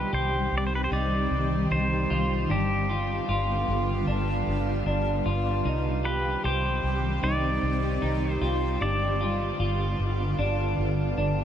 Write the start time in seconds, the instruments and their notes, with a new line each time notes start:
Already playing: ambient pad D#3 G3 C4 G4, clean electric guitar G4, pedal steel guitar B4
0.13 fingered electric bass C2, clean electric guitar G4, pedal steel guitar C5
0.52 fingered electric bass C2
0.58 pedal steel guitar D5
0.67 pedal steel guitar C5
0.75 pedal steel guitar B4
0.84 pedal steel guitar C5
0.91 fingered electric bass C2, clean electric guitar D#4, pedal steel guitar D5
1.31 fingered electric bass C2
1.71 fingered electric bass C2, clean electric guitar D#4, pedal steel guitar C5
2.10 fingered electric bass C2, clean electric guitar F4
2.49 fingered electric bass G1, ambient pad D3 B3 F4, clean electric guitar D4, pedal steel guitar G4
2.89 clean electric guitar F4
3.28 fingered electric bass G1, clean electric guitar F4
3.68 fingered electric bass G1
4.07 fingered electric bass G1, clean electric guitar D4
4.47 fingered electric bass G1
4.86 fingered electric bass G1, clean electric guitar D4
5.26 fingered electric bass G1, clean electric guitar F4
5.65 fingered electric bass C2, ambient pad D#3 G3 C4 G4, clean electric guitar D#4
6.05 clean electric guitar G4, pedal steel guitar B4
6.44 fingered electric bass C2, clean electric guitar G4, pedal steel guitar C5
6.83 fingered electric bass C2
7.23 fingered electric bass C2, clean electric guitar D#4, pedal steel guitar D5
7.62 fingered electric bass C2
8.02 fingered electric bass C2, clean electric guitar D#4
8.32 pedal steel guitar C5
8.41 fingered electric bass C2, clean electric guitar F4
8.80 fingered electric bass G1, ambient pad D3 B3 F4, clean electric guitar D4, pedal steel guitar D5
9.21 clean electric guitar F4
9.59 fingered electric bass G1, clean electric guitar F4
9.99 fingered electric bass G1
10.38 fingered electric bass G1, clean electric guitar D4
10.78 fingered electric bass G1
11.18 fingered electric bass G1, clean electric guitar D4